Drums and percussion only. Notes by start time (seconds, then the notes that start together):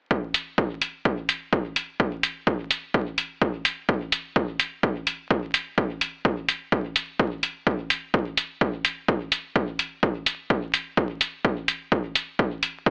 0.11 kick
0.34 closed hi-hat
0.58 kick
0.82 closed hi-hat
1.05 kick
1.29 closed hi-hat
1.53 kick
1.76 closed hi-hat
2.00 kick
2.23 closed hi-hat
2.47 kick
2.71 closed hi-hat
2.94 kick
3.18 closed hi-hat
3.42 kick
3.65 closed hi-hat
3.89 kick
4.12 closed hi-hat
4.36 kick
4.60 closed hi-hat
4.83 kick
5.07 closed hi-hat
5.30 kick
5.54 closed hi-hat
5.78 kick
6.01 closed hi-hat
6.25 kick
6.49 closed hi-hat
6.72 kick
6.96 closed hi-hat
7.19 kick
7.43 closed hi-hat
7.67 kick
7.90 closed hi-hat
8.14 kick
8.37 closed hi-hat
8.61 kick
8.85 closed hi-hat
9.08 kick
9.32 closed hi-hat
9.56 kick
9.79 closed hi-hat
10.03 kick
10.26 closed hi-hat
10.50 kick
10.74 closed hi-hat
10.97 kick
11.21 closed hi-hat
11.45 kick
11.68 closed hi-hat
11.92 kick
12.15 closed hi-hat
12.39 kick
12.63 closed hi-hat
12.86 kick